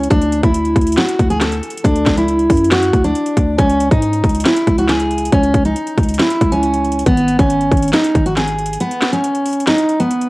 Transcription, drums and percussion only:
0.03 closed hi-hat medium
0.11 kick loud
0.11 closed hi-hat medium
0.22 closed hi-hat medium
0.32 closed hi-hat medium
0.43 kick loud
0.43 closed hi-hat medium
0.54 closed hi-hat medium
0.65 closed hi-hat medium
0.76 kick loud
0.76 closed hi-hat soft
0.81 closed hi-hat medium
0.87 closed hi-hat medium
0.92 closed hi-hat medium
0.97 snare loud
0.97 clap medium
0.97 closed hi-hat medium
1.09 closed hi-hat medium
1.19 kick medium
1.19 closed hi-hat medium
1.30 closed hi-hat medium
1.41 snare medium
1.41 clap medium
1.41 closed hi-hat medium
1.52 closed hi-hat medium
1.63 closed hi-hat medium
1.70 closed hi-hat medium
1.77 closed hi-hat medium
1.85 kick loud
1.85 closed hi-hat medium
1.96 closed hi-hat medium
2.06 kick loud
2.06 snare medium
2.06 clap medium
2.06 closed hi-hat medium
2.17 closed hi-hat medium
2.28 closed hi-hat medium
2.39 closed hi-hat medium
2.50 kick loud
2.50 closed hi-hat medium
2.50 open hi-hat medium
2.57 closed hi-hat medium
2.64 closed hi-hat medium
2.71 snare loud
2.71 clap medium
2.71 closed hi-hat medium
2.83 closed hi-hat medium
2.93 kick medium
2.93 closed hi-hat medium
3.04 closed hi-hat medium
3.15 closed hi-hat medium
3.26 closed hi-hat medium
3.37 kick loud
3.37 closed hi-hat medium
3.59 kick loud
3.59 closed hi-hat medium
3.69 closed hi-hat medium
3.80 closed hi-hat medium
3.91 kick loud
3.91 closed hi-hat medium
4.02 closed hi-hat medium
4.13 closed hi-hat medium
4.24 kick loud
4.24 closed hi-hat soft
4.29 closed hi-hat medium
4.35 closed hi-hat medium
4.40 closed hi-hat medium
4.45 snare loud
4.45 clap medium
4.45 closed hi-hat medium
4.56 closed hi-hat medium
4.67 kick medium
4.67 closed hi-hat medium
4.78 closed hi-hat medium
4.88 snare medium
4.88 clap medium
4.88 closed hi-hat medium
5.00 closed hi-hat medium
5.11 closed hi-hat medium
5.18 closed hi-hat medium
5.25 closed hi-hat medium
5.32 kick loud
5.32 closed hi-hat medium
5.43 closed hi-hat medium
5.54 kick medium
5.54 closed hi-hat medium
5.65 closed hi-hat medium
5.76 closed hi-hat medium
5.87 closed hi-hat medium
5.98 kick loud
5.98 closed hi-hat medium
6.03 closed hi-hat medium
6.09 closed hi-hat medium
6.14 closed hi-hat medium
6.19 snare loud
6.19 clap medium
6.19 closed hi-hat medium
6.30 closed hi-hat medium
6.41 kick medium
6.41 closed hi-hat medium
6.52 closed hi-hat medium
6.63 closed hi-hat medium
6.74 closed hi-hat medium
6.85 closed hi-hat medium
6.92 closed hi-hat medium
6.99 closed hi-hat medium
7.06 kick loud
7.06 closed hi-hat medium
7.17 closed hi-hat medium
7.28 closed hi-hat medium
7.39 kick loud
7.39 closed hi-hat medium
7.50 closed hi-hat medium
7.61 closed hi-hat medium
7.72 kick loud
7.72 closed hi-hat soft
7.77 closed hi-hat medium
7.82 closed hi-hat medium
7.88 closed hi-hat medium
7.93 snare loud
7.93 clap medium
7.93 closed hi-hat medium
8.04 closed hi-hat medium
8.15 kick medium
8.15 closed hi-hat medium
8.26 closed hi-hat medium
8.36 snare medium
8.36 clap medium
8.36 closed hi-hat medium
8.48 closed hi-hat medium
8.59 closed hi-hat medium
8.66 closed hi-hat medium
8.73 closed hi-hat medium
8.80 closed hi-hat medium
8.91 closed hi-hat medium
9.02 snare medium
9.02 clap medium
9.02 closed hi-hat medium
9.13 closed hi-hat medium
9.24 closed hi-hat medium
9.35 closed hi-hat medium
9.46 closed hi-hat medium
9.46 open hi-hat medium
9.53 closed hi-hat medium
9.60 closed hi-hat medium
9.67 snare loud
9.67 clap medium
9.67 closed hi-hat medium
9.78 closed hi-hat medium
9.89 closed hi-hat medium
10.00 closed hi-hat medium
10.11 closed hi-hat medium
10.21 closed hi-hat medium

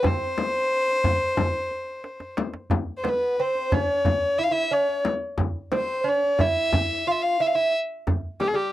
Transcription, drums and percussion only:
0.04 frame drum medium
0.04 tombak dum medium
0.22 tombak ka soft
0.38 tombak tek medium
0.38 frame drum medium
0.72 tombak ka soft
0.88 tombak ka soft
1.04 tombak dum medium
1.04 frame drum medium
1.22 tombak ka soft
1.37 frame drum medium
1.37 tombak dum medium
1.55 tombak ka soft
1.71 tombak ka soft
2.04 tombak tek soft
2.20 tombak ka medium
2.37 tombak tek medium
2.37 frame drum medium
2.54 tombak ka medium
2.70 tombak dum medium
2.70 frame drum medium
3.04 tombak tek medium
3.04 frame drum medium
3.38 tombak ka soft
3.55 tombak ka soft
3.72 tombak dum medium
3.72 frame drum medium
4.05 tombak dum medium
4.05 frame drum medium
4.22 tombak ka soft
4.39 tombak ka soft
4.89 tombak ka soft
5.05 tombak tek medium
5.05 frame drum medium
5.38 frame drum medium
5.38 tombak dum medium
5.72 tombak tek medium
5.72 frame drum medium
6.06 tombak ka soft
6.23 tombak ka soft
6.39 frame drum medium
6.39 tombak dum medium
6.57 tombak ka soft
6.72 frame drum medium
6.72 tombak dum medium
6.91 tombak ka soft
7.07 tombak ka soft
7.57 tombak ka soft
8.07 frame drum medium
8.07 tombak dum medium
8.40 tombak tek medium
8.40 frame drum medium

